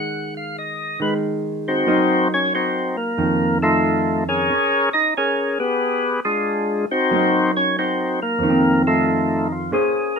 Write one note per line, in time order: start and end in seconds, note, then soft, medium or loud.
0.00 0.99 D#3 medium
0.00 1.00 G#3 medium
0.00 0.34 F#5 loud
0.37 0.57 F5 medium
0.58 1.00 D#5 medium
1.00 1.87 D#3 soft
1.00 1.87 G#3 soft
1.00 1.14 B4 medium
1.68 2.28 C4 medium
1.68 2.28 D#4 medium
1.68 2.28 F#4 medium
1.68 2.28 C5 loud
1.87 3.18 F#3 medium
1.87 3.18 A#3 medium
1.87 3.18 D#4 medium
2.34 2.53 C#4 medium
2.34 2.53 C#5 loud
2.55 2.97 C4 medium
2.55 2.97 D#4 medium
2.55 2.96 F#4 medium
2.55 2.96 C5 medium
2.97 3.58 A#3 medium
2.97 3.58 A#4 medium
3.18 4.49 F2 medium
3.18 4.49 D#3 medium
3.62 4.24 A3 medium
3.62 4.24 D#4 medium
3.62 4.24 F4 medium
3.62 4.24 A4 medium
4.29 4.89 C#4 medium
4.29 4.90 G#4 medium
4.29 4.89 A#4 medium
4.29 4.89 C#5 loud
4.50 5.80 C#4 soft
4.93 5.14 D#4 medium
4.93 5.14 D#5 loud
5.17 5.59 C#4 medium
5.17 5.59 G#4 medium
5.17 5.59 A#4 medium
5.17 5.58 C#5 medium
5.59 6.20 B3 medium
5.59 6.20 G4 medium
5.59 6.20 G#4 medium
5.59 6.20 B4 medium
6.25 6.86 G#3 medium
6.25 6.86 D4 medium
6.25 6.86 F4 medium
6.25 6.86 G#4 medium
6.91 7.52 C4 medium
6.91 7.52 D#4 medium
6.91 7.52 F#4 medium
6.91 7.52 C5 loud
7.11 8.42 F#3 medium
7.11 8.42 A#3 medium
7.11 8.43 D#4 medium
7.57 7.77 C#4 medium
7.57 7.76 C#5 loud
7.79 8.20 C4 medium
7.79 8.20 D#4 medium
7.79 8.20 F#4 medium
7.79 8.20 C5 medium
8.22 8.83 A#3 medium
8.22 8.82 A#4 medium
8.39 9.71 F2 medium
8.43 9.72 D#3 medium
8.50 9.72 C4 medium
8.87 9.48 A3 medium
8.87 9.07 D#4 medium
8.87 9.48 F4 medium
8.87 9.48 A4 medium
9.08 9.53 D#4 medium
9.52 9.71 F4 medium
9.72 10.19 A#3 soft
9.72 10.19 C#4 soft
9.72 10.19 G#4 medium
9.72 10.18 G#4 medium
9.72 10.19 C5 medium
10.16 10.19 A#4 medium